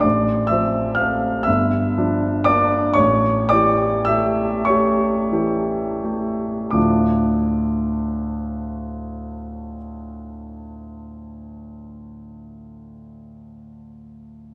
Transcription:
0.00 A1 D5 D6
0.47 F3 E5 E6
0.51 C4
0.95 F5 F6
0.99 A3 C4
1.43 G1 E5 E6
1.98 F3 D4
2.44 A#3 D4 D5 D6
2.94 A1 C#5 C#6
3.49 E3 D5 D6
3.53 G4
4.05 A3 G4 E5 E6
4.65 G4 C#5 C#6
4.69 A3
5.32 E3 G4
6.04 A3 G4
6.71 D2 A2 F3 A3 D4 F4 D6

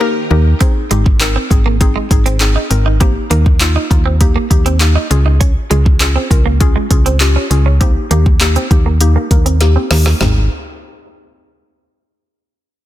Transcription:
Already playing: D#3 D#4 G4 A#4
0.01 A#3 D#4 G4 A#4
0.31 D#2 A#3 D#4 G4 A#4
0.60 C4 D#4 G#4, kick, closed hi-hat
0.91 G#1 G#3 C4 D#4 G4, closed hi-hat
1.06 muted clean electric guitar stroke, kick
1.20 C4 D#4 A#4, clap, closed hi-hat
1.36 C4
1.50 G#1 C4 D#4 G#4, muted clean electric guitar stroke, kick, closed hi-hat
1.66 A#3
1.81 C4 D#4 G#4, kick, closed hi-hat
1.96 G#3
2.11 G#1 C4 D#4 G#4, muted clean electric guitar stroke, kick, closed hi-hat
2.26 C4, closed hi-hat
2.41 C4 D#4 G#4, clap, closed hi-hat
2.56 D#4
2.70 G#1 C4 D#4 A#4, muted clean electric guitar stroke, closed hi-hat
2.86 D#4
3.00 A#3 C4 D#4 G4, kick, closed hi-hat
3.30 D#2 A#3 D#4 A#4, closed hi-hat
3.46 muted clean electric guitar stroke, kick
3.60 A#3 D#4 F4, clap, closed hi-hat
3.76 D#4
3.90 D#2 A#3 D#4 F4, muted clean electric guitar stroke, kick, closed hi-hat
4.06 C4
4.20 A#3 D#4 G4, kick, closed hi-hat
4.36 A#3
4.50 D#2 A#3 D#4 G4, muted clean electric guitar stroke, kick, closed hi-hat
4.66 C4, closed hi-hat
4.80 A#3 D#4 G4, clap, closed hi-hat
4.96 D#4
5.10 C#2 C#4 F4 G#4, muted clean electric guitar stroke, closed hi-hat
5.26 D#4
5.40 C#4, kick, closed hi-hat
5.70 C#2 G#3 C#4 F4 G#4, closed hi-hat
5.85 muted clean electric guitar stroke, kick
6.00 C#4 F4 G#4, clap, closed hi-hat
6.16 C4
6.30 C#2 C#4 F4 A#4, muted clean electric guitar stroke, kick, closed hi-hat
6.46 A#3
6.60 C#4 F4 G#4, kick, closed hi-hat
6.76 G#3
6.90 C#2 C#4 F4 G#4, muted clean electric guitar stroke, kick, closed hi-hat
7.06 C4, closed hi-hat
7.20 C#4 F4 G4, clap, closed hi-hat
7.36 C#4
7.50 C#2 C#4 F4 G#4, muted clean electric guitar stroke, closed hi-hat
7.66 C#4
7.80 A#3 C4 D#4 G4, kick, closed hi-hat
8.11 D#2 A#3 D#4 G4, closed hi-hat
8.26 muted clean electric guitar stroke, kick
8.41 A#3 D#4 G4, clap, closed hi-hat
8.56 C4, closed hi-hat
8.71 D#2 A#3 D#4 G4, muted clean electric guitar stroke, kick, closed hi-hat
8.86 A#3
9.01 A#3 D#4 G4, closed hi-hat
9.16 A#3
9.31 D#2 A#3 D#4 A#4, muted clean electric guitar stroke, kick, closed hi-hat
9.46 C4, closed hi-hat
9.61 A#3 D#4 G4, snare, closed hi-hat
9.76 C4
9.91 D#2 A#3 D#4 G4, muted clean electric guitar stroke, snare, open hi-hat
10.06 A#3, snare
10.21 G#1 G#3 C4 D#4 G#4, snare, floor tom

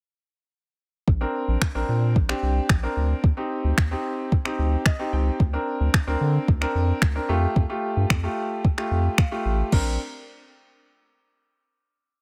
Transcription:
1.08 A#1, kick
1.21 C4 D4 A#4
1.48 A#1
1.62 finger snap, kick
1.75 A#1 C4 D4 A#4
1.89 A#2
2.16 A#1, kick
2.29 C4 D4 G4, finger snap
2.43 C2
2.69 A#1, finger snap, kick
2.83 C4 D4 A#4
2.97 D2
3.24 D#2, kick
3.37 C4 D#4 G4
3.64 D2
3.78 D#2, finger snap, kick
3.91 C4 D#4 G4
4.32 kick
4.45 C4 D#4 G4, finger snap
4.59 D2
4.86 D#5, finger snap, kick
4.99 C4 D#4 G4
5.13 C#2 G5
5.40 D2, kick
5.53 C4 D4 A#4
5.80 D2
5.94 finger snap, kick
6.07 D2 C4 D4 A#4
6.21 D3
6.48 D2, kick
6.61 C4 D4 A#4, finger snap
6.75 F2
7.02 D2, finger snap, kick
7.15 C4 D4 A#4
7.29 F2 A3 F4 G4
7.56 F2, kick
7.69 A3 F4 G4
7.97 G2
8.10 F2, finger snap, kick
8.23 A3 F4 G4
8.65 kick
8.77 A3 F4 G4, finger snap
8.91 F2
9.18 finger snap, kick
9.32 A3 F4 G4
9.45 A1
9.72 A#1 C4 D4 A#4, kick, crash

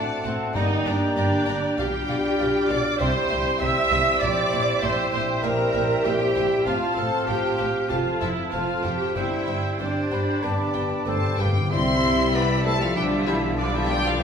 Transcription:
Already playing: A3 C4 F#4 D5 F#5 A5
0.24 A1 A2 C4 C5 F#5 A5
0.54 G1 G2 G3 A#3 D#4 G4 D5 D#5 G5 A#5
0.85 G1 G2 D4 D5 A#5
1.16 G1 G2 D4 D5 A#5
1.47 G1 G2 D5 A#5
1.78 B1 B2 G3 D4 F4 G4 D5 F5 G5
2.08 B1 B2 D5 F5
2.39 B1 B2 D5 F5
2.69 B1 B2 D5 F5 D6
3.00 C2 C3 G3 C4 E4 C5 E5 G5 C6
3.30 C2 C3 C5 E5
3.60 C2 C3 G3 C5 E5 G5 E6
3.91 C2 C3 C5 E5
4.21 A#1 A#2 G3 C5 D5 E5 G5 D6
4.51 A#1 A#2 C5 E5
4.81 A#1 A#2 G3 C5 E5 G5 C6
5.12 A#1 A#2 C5 E5 C6
5.43 A#1 A#2 G3 A#4 C5 E5 G5 A#5
5.74 A#1 A#2 C5 E5
6.05 A#1 A#2 G3 G4 C5 E5 G5
6.36 A#1 A#2 C5 E5
6.66 A1 A2 F3 C4 F4 C5 F5 A5
6.97 A1 A2 A4 C5 F5 A5
7.28 A1 A2 G4 C5 F5 G5
7.59 A1 A2 C5 F5
7.89 F1 F2 F3 C4 F4 A4 C5 F5 A5
8.21 F1 F2 E4 C5 E5 A5
8.52 F1 F2 F3 C4 F4 A4 C5 F5 A5
8.83 F1 F2 G4 C5 G5 A5
9.16 G1 G2 G3 C4 E4 G4 C5 E5 G5
9.47 G1 G2 C5 G5
9.79 G1 G2 G3 C4 D4 G4 C5 D5 G5
10.11 G1 G2 C5 G5 B5
10.43 G1 G2 G3 B3 G4 B4 D5 G5 A5
10.51 G2
10.59 G2
10.67 G2
10.74 G1 G2 B4 G5
10.82 G2
10.90 G2
11.05 G1 G2 A3 A4 B4 C5 G5 A5
11.13 G2
11.21 G2
11.28 G2
11.37 G1 G2 G3 G4 B4 F5 G5
11.45 G2
11.53 G2
11.60 G2
11.71 C2 C3 G3 C4 E4 C5 E5 C6
12.34 B3 B4 D5 B5
12.64 A3 A4 C5 A5
12.80 F3 F4 A4 F5
12.96 B1 D3 F3 G3 D4 F4 G4 B4 G5
13.27 E3 E4 G4 E5
13.57 D3 G3 D4 F4 D5
13.73 E3 E4 G4 E5
13.89 G3 G4 B4 G5
14.04 F3 F4 A4 F5
14.19 C2 E3 C4 E4 G4 C5 E5

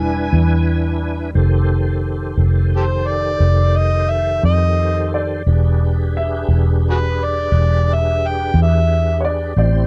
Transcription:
Already playing: E1 G3 D4 E4 B4 G#5
0.33 E2
1.34 F1 D#3 G4 A4 C5
2.37 F1
2.76 G4 A4 C5
3.07 D5
3.40 F1
3.77 D#5
4.10 E5
4.43 F2 D#5
5.14 D5
5.47 E1 D4 G4 G#4 B4
6.17 E5
6.48 E1
6.90 F#4 G#4 B4
7.24 D5
7.52 E1
7.94 E5
8.27 G5
8.54 E2
8.62 E5
9.21 C#5
9.25 D5
9.57 A1 C4 E4 G4 C5 D5

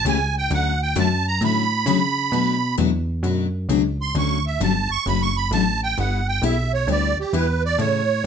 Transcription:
0.05 C#2 C#3 E3 A3 C#4 G4 G#5
0.38 G5
0.50 D2 D3 F#3 A3 C#4 F#4 F#5
0.83 G5
0.95 F#2 D3 F#3 A3 C#4 F#4 A5
1.28 A#5
1.41 A2 D3 F#3 A3 C#4 F#4 B5
1.86 C#3 D3 F#3 A3 C#4 F#4
2.32 B2 F#3 A3 D4 F#4
2.77 E2 B2 F#3 A3 D4 F#4
3.23 F#2 B2 F#3 A3 D4 F#4
3.69 C#2 B2 F#3 A3 D4 F#4
4.01 C6
4.15 D2 D3 F#3 A3 C#4 F#4 C#6
4.47 E5
4.60 G1 D3 F#3 A3 C#4 F#4 A5
4.89 G1 C#6
5.06 F#1 D3 F#3 A3 C#4 F#4 B5
5.22 C#6
5.37 B5
5.51 A1 D3 F#3 A3 C#4 F#4 A5
5.83 G5
5.97 G1 G3 B3 E4 G4 F#5
6.28 G5
6.42 B1 G3 B3 E4 G4 E5
6.74 C#5
6.87 D2 G3 B3 E4 G4 D5
7.17 D2 G4
7.33 E2 G3 B3 E4 G4 B4
7.65 D5
7.78 A2 C#3 E3 A3 C#4 A4 C#5

